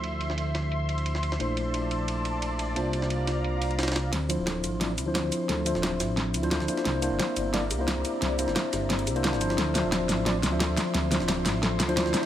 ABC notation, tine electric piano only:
X:1
M:4/4
L:1/16
Q:1/4=176
K:Dm
V:1 name="Tine electric piano"
[F,DEc]16 | [A,DEc]16 | [B,DFc]16 | z2 [F,DEc]6 [F,DEd] z2 [F,DEc]4- [F,DEc]- |
[F,DEc]2 [F,Dce]8- [F,Dce] [F,DEc] [F,DEc]2 [B,DEc]2- | [B,DEc]2 [B,DEc]6 [B,DEd] z2 [B,DEc]4- [B,DEc]- | [B,DEc]2 [B,DEc]8- [B,DEc] [B,DEc] [B,DEc]2 [F,DEc]2- | [F,DEc]2 [F,Dce]6 [F,DEd] z2 [F,Dce]4- [F,Dce]- |
[F,Dce]2 [F,Dce]8- [F,Dce] [F,DEc] [F,DEc]2 [A,DEc]2 |]